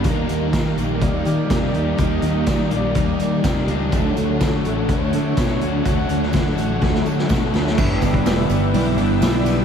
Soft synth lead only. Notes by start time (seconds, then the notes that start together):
0.05 A#4
1.02 D5
1.99 D#5
2.46 D5
2.72 D5
3.92 A4
4.88 C#5
5.84 F#5
8.26 B3
8.75 E4
8.99 E4